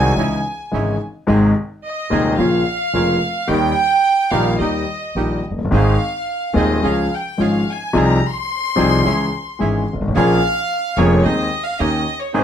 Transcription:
Already playing: C2 C3 D#3 G#3 C4 F#4 G#4 G#5
0.15 C#2 C#3 E3 G#3 C#4 D#4 E4
0.71 G#1 G#2 C#3 E3 G#3 C#4 D#4 E4
1.27 G#1 G#2 C3 D#3 G#3 C4 D#4 G#4
1.85 D#5
2.10 D#1 D#2 C3 D#3 G#3 C4 D#4 G#4
2.38 A#1 A#2 C#3 F3 A#3 C#4 F4 F5
2.93 F1 F2 C#3 F3 A#3 C#4 F4
3.47 D#2 D#3 G3 A#3 D#4 G4 G5
4.31 A#1 A#2 D#3 G3 A#3 D#4 G4 F5
4.59 D#2 D#3 G3 A#3 D#4 G4 D#5
5.15 A#1 A#2 D#3 G3 A#3 D#4 G4
5.50 F1
5.58 F#1
5.65 G1
5.71 G#1 G#2 D#3 G#3 C4 D#4 G#4 F5
6.53 D#1 D#2 D#3 G#3 C4 D#4 G#4 D#5
6.83 C#2 C#3 F3 G#3 C#4 F4 G#4 F5
7.14 G5
7.38 G#1 G#2 F3 G#3 C#4 F4 G#4
7.42 F5
7.71 G#5
7.93 C2 C3 F3 C4 D#4 F4 G#4
7.98 A#5
8.27 C6
8.76 C2 C3 F3 C4 D#4 F4 G#4
9.04 C#2 C#3 E3 G#3 C#4 E4 G#4
9.59 G#1 G#2 E3 G#3 C#4 E4 G#4
9.93 G1
10.01 G#1
10.08 A1
10.15 A#1 A#2 F3 A#3 C#4 G#4 F5
10.97 F1 F2 F3 A#3 C#4 G#4 C#5
11.24 D#2 D#3 G#3 C4 D#4 G#4 D#5
11.65 F5
11.79 D#2 D#3 A#3 C#4 D#4 G4 D#5
12.21 C#5
12.33 G#1 G#2 D#3 G#3 C4 D#4 G#4 C5

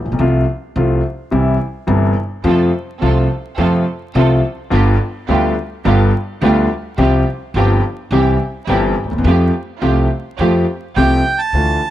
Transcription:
0.05 A#1
0.12 B1
0.19 C2 C3 F3 A3 F4
0.76 C2 C3 F3 A3 F4
1.31 C2 C3 E3 G3 E4
1.87 G1 G2 C3 E3 G3 E4
2.44 F2 C3 F3 A3 C4 F4 A4
3.01 C2 C3 F3 A3 C4 F4 A4
3.58 F2 C3 F3 A3 C4 F4 A4
4.15 C2 C3 F3 A3 C4 F4 A4
4.70 G1 G2 D3 G3 B3 F4 G4
5.28 D2 D3 G3 B3 F4 G4
5.85 G1 G2 D3 G3 B3 F4 G4
6.41 D2 D3 G3 B3 F4 G4
6.98 C2 C3 F3 G3 C4 F4 G4
7.54 G1 G2 F3 G3 C4 F4 G4
8.11 C2 C3 E3 G3 C4 E4 G4
8.67 G1 G2 E3 G3 C4 E4 G4
9.04 D2
9.11 D#2
9.18 E2
9.24 F2 F3 A3 C4 F4 G4
9.82 C2 C3 F3 A3 C4 F4 G4
10.38 F2 F3 A3 C4 F4 G4
10.96 C2 C3 F3 A3 C4 F4 G4 G5
11.38 A5
11.53 D2 D3 E3 A3 D4 F4

